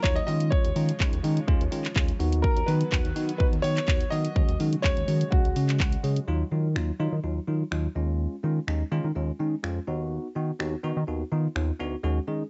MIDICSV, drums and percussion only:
0, 0, Header, 1, 2, 480
1, 0, Start_track
1, 0, Tempo, 480000
1, 519, Time_signature, 4, 2, 24, 8
1, 12499, End_track
2, 0, Start_track
2, 0, Title_t, "Drums"
2, 39, Note_on_c, 9, 36, 125
2, 39, Note_on_c, 9, 39, 123
2, 139, Note_off_c, 9, 36, 0
2, 139, Note_off_c, 9, 39, 0
2, 164, Note_on_c, 9, 42, 59
2, 264, Note_off_c, 9, 42, 0
2, 280, Note_on_c, 9, 46, 65
2, 380, Note_off_c, 9, 46, 0
2, 404, Note_on_c, 9, 42, 76
2, 504, Note_off_c, 9, 42, 0
2, 519, Note_on_c, 9, 36, 113
2, 619, Note_off_c, 9, 36, 0
2, 646, Note_on_c, 9, 42, 63
2, 746, Note_off_c, 9, 42, 0
2, 759, Note_on_c, 9, 46, 66
2, 859, Note_off_c, 9, 46, 0
2, 887, Note_on_c, 9, 42, 87
2, 987, Note_off_c, 9, 42, 0
2, 1002, Note_on_c, 9, 36, 104
2, 1002, Note_on_c, 9, 39, 113
2, 1102, Note_off_c, 9, 36, 0
2, 1102, Note_off_c, 9, 39, 0
2, 1129, Note_on_c, 9, 42, 52
2, 1229, Note_off_c, 9, 42, 0
2, 1240, Note_on_c, 9, 46, 78
2, 1340, Note_off_c, 9, 46, 0
2, 1369, Note_on_c, 9, 42, 74
2, 1469, Note_off_c, 9, 42, 0
2, 1480, Note_on_c, 9, 36, 110
2, 1580, Note_off_c, 9, 36, 0
2, 1610, Note_on_c, 9, 42, 51
2, 1710, Note_off_c, 9, 42, 0
2, 1720, Note_on_c, 9, 46, 81
2, 1820, Note_off_c, 9, 46, 0
2, 1846, Note_on_c, 9, 39, 63
2, 1848, Note_on_c, 9, 42, 70
2, 1947, Note_off_c, 9, 39, 0
2, 1948, Note_off_c, 9, 42, 0
2, 1959, Note_on_c, 9, 36, 125
2, 1959, Note_on_c, 9, 39, 118
2, 2059, Note_off_c, 9, 36, 0
2, 2059, Note_off_c, 9, 39, 0
2, 2084, Note_on_c, 9, 42, 60
2, 2184, Note_off_c, 9, 42, 0
2, 2200, Note_on_c, 9, 46, 65
2, 2300, Note_off_c, 9, 46, 0
2, 2325, Note_on_c, 9, 42, 82
2, 2425, Note_off_c, 9, 42, 0
2, 2439, Note_on_c, 9, 36, 114
2, 2539, Note_off_c, 9, 36, 0
2, 2566, Note_on_c, 9, 42, 64
2, 2666, Note_off_c, 9, 42, 0
2, 2679, Note_on_c, 9, 46, 65
2, 2779, Note_off_c, 9, 46, 0
2, 2807, Note_on_c, 9, 42, 89
2, 2907, Note_off_c, 9, 42, 0
2, 2922, Note_on_c, 9, 36, 102
2, 2922, Note_on_c, 9, 39, 117
2, 3022, Note_off_c, 9, 36, 0
2, 3022, Note_off_c, 9, 39, 0
2, 3049, Note_on_c, 9, 42, 52
2, 3149, Note_off_c, 9, 42, 0
2, 3160, Note_on_c, 9, 46, 78
2, 3260, Note_off_c, 9, 46, 0
2, 3289, Note_on_c, 9, 42, 77
2, 3389, Note_off_c, 9, 42, 0
2, 3400, Note_on_c, 9, 36, 110
2, 3500, Note_off_c, 9, 36, 0
2, 3530, Note_on_c, 9, 42, 48
2, 3630, Note_off_c, 9, 42, 0
2, 3640, Note_on_c, 9, 46, 76
2, 3740, Note_off_c, 9, 46, 0
2, 3768, Note_on_c, 9, 39, 69
2, 3769, Note_on_c, 9, 42, 73
2, 3868, Note_off_c, 9, 39, 0
2, 3869, Note_off_c, 9, 42, 0
2, 3880, Note_on_c, 9, 36, 124
2, 3880, Note_on_c, 9, 39, 121
2, 3980, Note_off_c, 9, 36, 0
2, 3980, Note_off_c, 9, 39, 0
2, 4005, Note_on_c, 9, 42, 61
2, 4105, Note_off_c, 9, 42, 0
2, 4121, Note_on_c, 9, 46, 64
2, 4221, Note_off_c, 9, 46, 0
2, 4246, Note_on_c, 9, 42, 79
2, 4346, Note_off_c, 9, 42, 0
2, 4360, Note_on_c, 9, 36, 110
2, 4460, Note_off_c, 9, 36, 0
2, 4486, Note_on_c, 9, 42, 66
2, 4586, Note_off_c, 9, 42, 0
2, 4599, Note_on_c, 9, 46, 66
2, 4699, Note_off_c, 9, 46, 0
2, 4727, Note_on_c, 9, 42, 91
2, 4827, Note_off_c, 9, 42, 0
2, 4841, Note_on_c, 9, 39, 113
2, 4842, Note_on_c, 9, 36, 97
2, 4941, Note_off_c, 9, 39, 0
2, 4942, Note_off_c, 9, 36, 0
2, 4969, Note_on_c, 9, 42, 53
2, 5069, Note_off_c, 9, 42, 0
2, 5080, Note_on_c, 9, 46, 77
2, 5180, Note_off_c, 9, 46, 0
2, 5210, Note_on_c, 9, 42, 75
2, 5310, Note_off_c, 9, 42, 0
2, 5321, Note_on_c, 9, 36, 116
2, 5421, Note_off_c, 9, 36, 0
2, 5450, Note_on_c, 9, 42, 51
2, 5550, Note_off_c, 9, 42, 0
2, 5560, Note_on_c, 9, 46, 81
2, 5660, Note_off_c, 9, 46, 0
2, 5687, Note_on_c, 9, 39, 68
2, 5688, Note_on_c, 9, 42, 75
2, 5787, Note_off_c, 9, 39, 0
2, 5788, Note_off_c, 9, 42, 0
2, 5799, Note_on_c, 9, 36, 118
2, 5799, Note_on_c, 9, 39, 121
2, 5899, Note_off_c, 9, 36, 0
2, 5899, Note_off_c, 9, 39, 0
2, 5924, Note_on_c, 9, 42, 61
2, 6024, Note_off_c, 9, 42, 0
2, 6040, Note_on_c, 9, 46, 61
2, 6140, Note_off_c, 9, 46, 0
2, 6164, Note_on_c, 9, 42, 78
2, 6264, Note_off_c, 9, 42, 0
2, 6761, Note_on_c, 9, 26, 102
2, 6861, Note_off_c, 9, 26, 0
2, 7719, Note_on_c, 9, 26, 109
2, 7819, Note_off_c, 9, 26, 0
2, 8681, Note_on_c, 9, 26, 109
2, 8781, Note_off_c, 9, 26, 0
2, 9639, Note_on_c, 9, 26, 108
2, 9739, Note_off_c, 9, 26, 0
2, 10600, Note_on_c, 9, 26, 100
2, 10700, Note_off_c, 9, 26, 0
2, 11559, Note_on_c, 9, 26, 113
2, 11659, Note_off_c, 9, 26, 0
2, 12499, End_track
0, 0, End_of_file